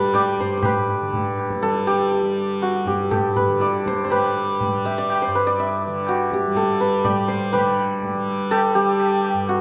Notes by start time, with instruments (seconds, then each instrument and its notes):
Already playing: tanpura G2 D3 G3, santur G4 A4 B4 D5
0.14 santur D5, tabla na, tabla ge
0.39 tanpura G2, santur C5, tabla ge
0.57 santur C5
0.63 santur B4, tabla na, tabla ge
1.01 tanpura D3
1.13 tabla tin, tabla ge
1.38 tabla na
1.50 tabla ke
1.62 tanpura G3, santur A4, tabla te
1.75 tabla te
1.87 santur G4, tabla ke
2.00 tabla te
2.12 tabla te
2.23 tanpura G3
2.36 tabla te
2.62 santur F#4, tabla te
2.74 tabla te
2.85 tanpura G2, santur G4, tabla ke
2.99 tabla te
3.11 santur A4, tabla na, tabla ge
3.36 santur B4, tabla ge
3.47 tanpura D3
3.60 santur D5, tabla te
3.74 tabla te
3.86 santur C5, tabla ke
3.98 tabla te
4.04 tanpura G3, santur C5
4.10 santur B4, tabla na, tabla ge
4.60 tabla tin, tabla ge
4.67 tanpura G3
4.85 santur E5, tabla na
4.98 santur D5
5.10 tabla na
5.22 santur C5
5.27 tanpura G2
5.35 santur B4
5.47 santur D5
5.58 santur E5, tabla te
5.82 tabla te
5.87 tanpura D3
6.07 santur F#4, tabla na
6.31 santur G4, tabla ke
6.47 tanpura G3
6.55 santur A4, tabla tin, tabla ge
6.80 santur B4
7.04 santur D5, tabla na, tabla ge
7.08 tanpura G3
7.28 santur C5, tabla ge
7.53 tanpura D3, santur B4, tabla na, tabla ge
8.02 tabla tin, tabla ge
8.14 tanpura G3
8.51 santur A4, tabla na
8.75 tanpura G3, santur G4
9.00 tabla na
9.24 tabla na
9.34 tanpura G2
9.49 santur F#4, tabla te